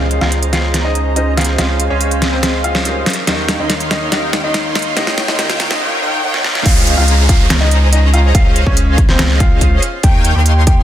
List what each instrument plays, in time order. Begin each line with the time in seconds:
Already playing: sub bass C#2, felt piano G#3 C#4 F4 C5, analog polysynth C#4 G#4 C5 D#5 F5, grand piano F4 F5, riser
0.11 closed hi-hat
0.21 sub bass C#2, analog polysynth C#4 G#4 C5 D#5 A#5, grand piano F4 F5, snare
0.32 closed hi-hat
0.43 closed hi-hat
0.53 grand piano F4 F5, snare, closed hi-hat
0.74 snare, closed hi-hat
0.84 grand piano D#4 D#5
0.95 closed hi-hat
1.15 felt piano G#3 C#4 F4 C5, grand piano D#4 D#5, closed hi-hat
1.37 grand piano F4 F5, snare, closed hi-hat
1.41 closed hi-hat
1.44 closed hi-hat
1.56 sub bass C#2, felt piano G#3 C#4 F4, analog polysynth C#4 G#4 C5 D#5 F5, grand piano F4 F5, snare, closed hi-hat
1.60 felt piano G#4
1.80 closed hi-hat
1.90 sub bass C#2, grand piano C#4 C#5, analog polysynth C#4 G#4 C5 D#5 F5
2.01 closed hi-hat
2.11 closed hi-hat
2.22 snare, closed hi-hat
2.32 grand piano C4 C5
2.43 snare, closed hi-hat
2.64 grand piano F4 F5, closed hi-hat
2.75 snare
2.84 felt piano G3 C#4 D#4 A#4, closed hi-hat
3.06 snare, closed hi-hat
3.10 closed hi-hat
3.13 closed hi-hat
3.25 sub bass D#2, analog polysynth D#3 D#4 C#5 F5 G5, felt piano G3 C#4 D#4, grand piano D#4 D#5, snare, closed hi-hat
3.30 felt piano A#4
3.48 snare, closed hi-hat
3.59 sub bass D#2, analog polysynth D#3 D#4 C#5 F5 C6, grand piano D#4 D#5
3.70 snare, closed hi-hat
3.80 closed hi-hat
3.91 grand piano D#4 D#5, snare, closed hi-hat
4.10 sub bass D#2, analog polysynth D#3 D#4 C#5 F5 G5, felt piano G3 C#4 D#4, grand piano D#4 D#5, snare, closed hi-hat
4.14 felt piano A#4
4.33 snare, closed hi-hat
4.44 sub bass D#2, analog polysynth D#3 D#4 C#5 F5 C6, grand piano D#4 D#5
4.54 snare, closed hi-hat
4.75 grand piano D#4 D#5, snare, closed hi-hat
4.79 closed hi-hat
4.82 closed hi-hat
4.95 sub bass D#2, analog polysynth D#3 D#4 C#5 F5 G5, felt piano G3 C#4 D#4, grand piano D#4 D#5, snare, closed hi-hat
4.99 felt piano A#4
5.07 snare
5.18 snare, closed hi-hat
5.28 sub bass D#2, analog polysynth D#3 D#4 C#5 F5 C6, grand piano D#4 D#5, snare
5.37 sub bass D#2, analog polysynth D#3 D#4 C#5 F5 G5, felt piano G3 C#4 D#4 A#4, grand piano D#4 D#5, snare, closed hi-hat
5.50 snare, closed hi-hat
5.60 snare, closed hi-hat
5.71 sub bass D#2, analog polysynth D#3 D#4 C#5 F5 C6, grand piano D#4 D#5, snare
5.81 analog polysynth D#3 D#4 C#5 F5 G5
6.02 analog polysynth D#3 D#4 C#5 F5 G5
6.23 analog polysynth D#3 D#4 C#5 F5 G5
6.34 snare
6.44 analog polysynth D#3 D#4 C#5 F5 G5, snare
6.55 snare
6.66 sub bass C#2, analog polysynth C#4 G#4 C5 D#5 F5, grand piano F4 F5, kick, closed hi-hat, crash, downlifter
6.87 closed hi-hat
6.97 sub bass C#2, analog polysynth C#4 G#4 C5 D#5 A#5, grand piano F4 F5
7.08 closed hi-hat
7.29 grand piano F4 F5, kick, closed hi-hat
7.50 snare, closed hi-hat
7.61 grand piano D#4 D#5
7.71 closed hi-hat
7.92 grand piano D#4 D#5, closed hi-hat
8.14 grand piano F4 F5, closed hi-hat
8.35 sub bass C#2, analog polysynth C#4 G#4 C5 D#5 F5, grand piano F4 F5, kick, closed hi-hat
8.56 closed hi-hat
8.66 sub bass C#2, analog polysynth C#4 G#4 C5 D#5 F5, grand piano C#4 C#5, kick
8.77 closed hi-hat
8.98 kick, closed hi-hat
9.09 grand piano C4 C5, snare
9.19 snare, closed hi-hat
9.40 grand piano F4 F5, kick, closed hi-hat
9.61 kick, closed hi-hat
9.82 closed hi-hat
10.03 sub bass D#2, analog polysynth D#3 D#4 C#5 F5 G5, grand piano G4 G5, kick, closed hi-hat
10.25 closed hi-hat
10.35 sub bass D#2, analog polysynth D#3 D#4 C#5 F5 C6, grand piano G4 G5
10.46 closed hi-hat
10.67 grand piano G4 G5, kick, closed hi-hat